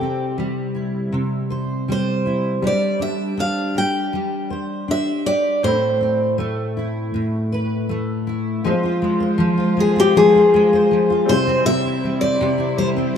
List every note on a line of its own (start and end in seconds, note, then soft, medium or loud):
0.00 1.11 C3 medium
0.00 2.22 G3 medium
0.00 2.99 C4 soft
0.00 2.23 E4 medium
0.00 0.36 G4 medium
0.00 1.50 C5 medium
0.00 2.24 C5 medium
0.38 1.88 G3 medium
0.75 2.25 E4 soft
1.12 2.71 C3 medium
1.50 3.02 C5 medium
1.88 2.62 G3 medium
1.88 2.66 C5 medium
2.26 2.71 E4 medium
2.62 5.60 G3 medium
2.62 4.12 G3 medium
2.62 5.61 D4 medium
2.66 5.62 C5 medium
2.66 3.02 D5 medium
2.99 3.36 D4 medium
2.99 3.40 E5 medium
3.37 4.87 D4 medium
3.37 3.78 F5 medium
3.75 5.25 G4 medium
3.75 4.49 G5 medium
4.13 5.71 G3 medium
4.50 7.52 C5 medium
4.88 5.71 D4 medium
4.88 5.29 E5 loud
5.26 5.72 G4 medium
5.26 5.64 D5 medium
5.63 7.13 A2 medium
5.63 8.60 A3 medium
5.63 8.61 C4 medium
5.63 6.36 C5 medium
5.67 8.62 B5 medium
6.01 9.51 C4 medium
6.38 7.88 A3 medium
6.77 8.26 E4 medium
7.14 8.72 A2 medium
7.52 8.64 B4 medium
7.89 8.72 A3 medium
8.27 8.72 E4 medium
8.64 9.37 F3 medium
8.64 11.24 G#3 medium
8.64 11.25 G#3 medium
8.64 11.24 C4 medium
8.64 11.25 F4 medium
8.64 9.20 C5 medium
8.64 11.25 C5 medium
8.69 11.26 C5 medium
8.83 9.56 F4 medium
9.02 9.76 G#3 medium
9.20 10.16 C5 medium
9.38 10.14 F3 medium
9.58 10.33 F4 medium
9.77 10.52 G#3 medium
9.77 9.98 G#4 medium
9.96 11.47 C4 medium
9.96 10.16 G4 medium
10.16 10.90 F3 medium
10.16 11.32 G#4 medium
10.16 10.73 C5 medium
10.35 11.09 F4 medium
10.54 11.36 G#3 medium
10.73 11.66 C5 medium
10.91 11.36 F3 medium
11.10 11.36 F4 medium
11.25 11.64 C3 medium
11.25 13.17 G3 medium
11.25 13.17 C4 medium
11.25 13.17 E4 medium
11.25 13.17 C5 medium
11.25 11.66 C5 loud
11.29 13.17 C5 medium
11.47 12.96 C4 medium
11.65 12.39 C3 medium
11.65 12.22 C5 medium
11.65 12.21 E5 loud
11.85 12.57 E4 medium
12.04 12.77 G3 medium
12.21 13.16 C5 medium
12.21 12.78 D5 medium
12.41 13.14 C3 medium
12.58 13.17 E4 medium
12.78 13.17 G3 medium
12.78 12.88 C5 medium
12.97 13.17 C4 medium